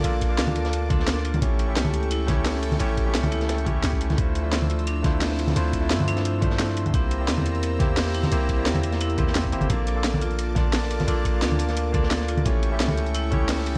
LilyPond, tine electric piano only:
\new Staff \with { instrumentName = "Tine electric piano" } { \time 4/4 \key d \minor \tempo 4 = 174 <bes d' f' a' d''>8. <bes d' f' f'' a''>4.~ <bes d' f' f'' a''>16 <bes d' f' d'' a''>4. | <a cis' e' g' cis''>8. <a cis' e' g' e''>4.~ <a cis' e' g' e''>16 <a cis' e' g' cis''>4. | <a cis' e' g' cis''>8. <a cis' e' g' e''>4.~ <a cis' e' g' e''>16 <a cis' e' g' cis''>4. | <a d' e' f' c''>8. <f a d' d'' e''>4.~ <f a d' d'' e''>16 <a d' e' f' c''>4. |
<a d' e' f' c''>8. <f a d' e' d''>4.~ <f a d' e' d''>16 <f a d' c'' e''>4. | <bes c' e' g' c''>8. <bes c' e' g' d''>4.~ <bes c' e' g' d''>16 <bes c' e' g' c''>4. | <bes c' e' g' c''>8. <bes c' e' g' d''>4.~ <bes c' e' g' d''>16 <bes c' e' g' c''>4 <bes c' e' g' c''>8 | <bes d' f' a' d''>8. <bes d' f' a' f''>4.~ <bes d' f' a' f''>16 <bes d' f' d'' a''>4. |
<bes d' f' a' d''>8. <bes d' f' f'' a''>4.~ <bes d' f' f'' a''>16 <bes d' f' d'' a''>4. | <a cis' e' g' cis''>8. <a cis' e' g' e''>4.~ <a cis' e' g' e''>16 <a cis' e' g' cis''>4. | }